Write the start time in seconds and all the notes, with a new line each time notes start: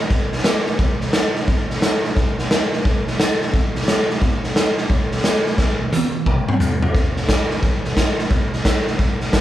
0.10 kick, snare
0.33 snare
0.38 snare
0.44 snare, hi-hat pedal
0.66 snare
0.79 kick, snare
1.01 snare
1.13 snare, hi-hat pedal
1.36 snare
1.48 kick, snare
1.70 snare
1.82 snare, hi-hat pedal
2.05 snare
2.17 kick, snare
2.39 snare
2.51 snare, hi-hat pedal
2.73 snare
2.85 kick, snare
3.07 snare
3.20 snare, hi-hat pedal
3.42 snare
3.54 kick, snare
3.76 snare
3.82 snare
3.88 snare, hi-hat pedal
4.10 snare
4.22 kick, snare
4.44 snare
4.56 snare, hi-hat pedal
4.78 snare
4.90 kick, snare
5.12 snare
5.18 snare
5.24 snare, hi-hat pedal
5.46 snare
5.58 kick, snare
5.93 hi-hat pedal, high tom
6.26 kick, mid tom
6.48 mid tom
6.60 floor tom, hi-hat pedal
6.82 floor tom
6.95 kick, snare
7.17 snare
7.29 kick, snare, hi-hat pedal
7.51 snare
7.63 kick, snare
7.85 snare
7.97 kick, snare, hi-hat pedal
8.19 snare
8.31 kick, snare
8.53 snare
8.65 kick, snare, hi-hat pedal
8.87 snare
8.99 kick, snare
9.21 snare
9.33 kick, snare, hi-hat pedal